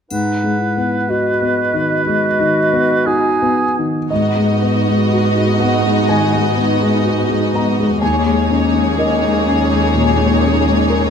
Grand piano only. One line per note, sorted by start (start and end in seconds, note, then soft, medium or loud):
0.11 2.01 G#2 soft
0.44 0.96 G#3 soft
0.77 1.29 B3 soft
1.10 1.60 F#4 soft
1.42 1.93 B3 soft
1.74 2.25 D#3 soft
2.06 2.59 G#3 soft
2.40 2.93 D#3 soft
2.73 3.28 B3 soft
3.07 3.63 F#4 soft
3.42 3.98 B3 soft
3.78 4.11 D#3 soft
4.10 6.05 G#2 soft
4.10 5.56 D#5 soft
4.36 4.76 G#3 soft
4.62 5.01 B3 soft
4.87 5.26 G#3 soft
5.13 5.51 F#4 soft
5.37 5.75 G#3 soft
5.60 5.99 B3 soft
5.60 6.05 F#5 soft
5.86 6.23 G#3 soft
6.09 6.47 D#3 soft
6.09 7.50 G#5 soft
6.33 6.71 G#3 soft
6.57 6.95 B3 soft
6.81 7.19 G#3 soft
7.05 7.44 F#4 soft
7.29 7.68 G#3 soft
7.54 7.92 B3 soft
7.54 7.99 A#5 soft
7.79 8.02 G#3 soft
8.01 9.91 D#2 soft
8.01 8.94 G#5 soft
8.26 8.65 G#3 soft
8.50 8.89 C#4 soft
8.74 9.13 G#3 soft
8.98 9.37 A#4 soft
8.98 11.10 D#5 soft
9.22 9.61 G#3 soft
9.47 9.85 C#4 soft
9.70 10.09 G#3 soft
9.95 10.33 A#2 soft
10.18 10.56 G#3 soft
10.42 10.80 C#4 soft
10.66 11.04 G#3 soft
10.90 11.10 A#4 soft